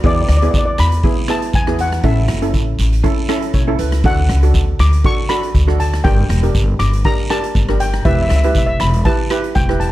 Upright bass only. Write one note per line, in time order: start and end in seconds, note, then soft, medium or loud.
0.04 0.26 E2 loud
0.29 0.51 D2 loud
0.54 0.76 E2 medium
0.79 1.01 E2 loud
1.54 1.98 E2 medium
2.04 2.26 A1 loud
2.29 2.51 F#1 loud
2.54 2.76 A1 medium
2.79 3.01 A1 medium
3.54 3.77 B1 medium
3.79 4.02 C#2 medium
4.04 4.26 D2 loud
4.29 4.51 C#2 loud
4.55 4.76 D2 medium
4.79 5.01 D2 medium
5.54 5.98 D2 medium
6.05 6.27 G1 loud
6.29 6.51 E1 loud
6.55 6.77 G1 medium
6.80 7.02 G1 medium
7.55 7.99 G1 medium
8.05 8.27 E1 loud
8.31 8.53 C#2 loud
8.55 8.77 E1 medium
8.81 9.03 E1 medium
9.56 9.92 E1 medium